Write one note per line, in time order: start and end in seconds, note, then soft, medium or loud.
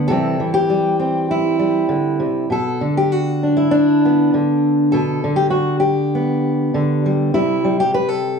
0.08 0.39 C3 medium
0.08 0.39 E3 soft
0.08 0.69 G3 soft
0.08 0.53 A4 medium
0.13 0.98 C4 soft
0.40 1.88 E3 medium
0.54 1.29 G4 loud
0.70 1.58 G3 soft
1.00 2.48 C4 soft
1.31 2.52 E4 medium
1.59 2.51 G3 soft
1.89 2.20 D3 medium
2.20 2.50 C3 soft
2.50 2.81 B2 medium
2.50 2.97 A4 medium
2.81 4.33 D3 medium
2.97 3.12 G4 medium
3.12 3.56 F#4 medium
3.43 3.71 D4 soft
3.57 4.33 E4 medium
3.71 4.93 D4 medium
4.05 4.91 B3 soft
4.34 5.23 D3 medium
4.92 5.24 B2 medium
4.92 5.36 A4 medium
5.24 6.73 D3 medium
5.36 5.50 G4 medium
5.50 5.79 F#4 medium
5.80 7.32 G4 medium
6.15 7.34 B3 soft
6.74 7.34 D3 medium
7.06 7.34 G3 soft
7.34 8.39 C3 medium
7.34 7.63 G3 soft
7.34 7.78 E4 medium
7.65 8.39 G3 medium
7.80 7.94 G4 loud
7.94 8.08 B4 loud
8.08 8.39 A4 medium